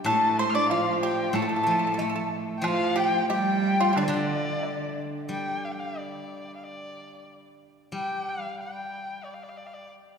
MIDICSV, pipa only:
0, 0, Header, 1, 2, 480
1, 0, Start_track
1, 0, Tempo, 646552
1, 48, Time_signature, 4, 2, 24, 8
1, 2447, Tempo, 665927
1, 5327, Tempo, 641711
1, 7488, End_track
2, 0, Start_track
2, 0, Title_t, "Pipa"
2, 0, Program_c, 0, 105
2, 46, Note_on_c, 0, 69, 93
2, 269, Note_off_c, 0, 69, 0
2, 291, Note_on_c, 0, 72, 98
2, 400, Note_off_c, 0, 72, 0
2, 406, Note_on_c, 0, 74, 91
2, 516, Note_off_c, 0, 74, 0
2, 527, Note_on_c, 0, 65, 85
2, 746, Note_off_c, 0, 65, 0
2, 766, Note_on_c, 0, 67, 91
2, 984, Note_off_c, 0, 67, 0
2, 1004, Note_on_c, 0, 69, 79
2, 1047, Note_off_c, 0, 69, 0
2, 1056, Note_on_c, 0, 69, 55
2, 1097, Note_off_c, 0, 69, 0
2, 1106, Note_on_c, 0, 69, 62
2, 1151, Note_off_c, 0, 69, 0
2, 1160, Note_on_c, 0, 69, 49
2, 1205, Note_off_c, 0, 69, 0
2, 1214, Note_on_c, 0, 69, 54
2, 1259, Note_off_c, 0, 69, 0
2, 1268, Note_on_c, 0, 69, 51
2, 1319, Note_off_c, 0, 69, 0
2, 1331, Note_on_c, 0, 69, 54
2, 1378, Note_off_c, 0, 69, 0
2, 1388, Note_on_c, 0, 69, 50
2, 1431, Note_off_c, 0, 69, 0
2, 1440, Note_on_c, 0, 69, 61
2, 1488, Note_off_c, 0, 69, 0
2, 1496, Note_on_c, 0, 69, 55
2, 1544, Note_off_c, 0, 69, 0
2, 1555, Note_on_c, 0, 69, 62
2, 1592, Note_off_c, 0, 69, 0
2, 1601, Note_on_c, 0, 69, 63
2, 1651, Note_off_c, 0, 69, 0
2, 1958, Note_on_c, 0, 65, 93
2, 2186, Note_off_c, 0, 65, 0
2, 2195, Note_on_c, 0, 67, 99
2, 2426, Note_off_c, 0, 67, 0
2, 2449, Note_on_c, 0, 67, 100
2, 2779, Note_off_c, 0, 67, 0
2, 2814, Note_on_c, 0, 65, 98
2, 2896, Note_off_c, 0, 65, 0
2, 2903, Note_on_c, 0, 65, 68
2, 2925, Note_off_c, 0, 65, 0
2, 2936, Note_on_c, 0, 62, 88
2, 3012, Note_off_c, 0, 62, 0
2, 3021, Note_on_c, 0, 62, 73
2, 3622, Note_off_c, 0, 62, 0
2, 7488, End_track
0, 0, End_of_file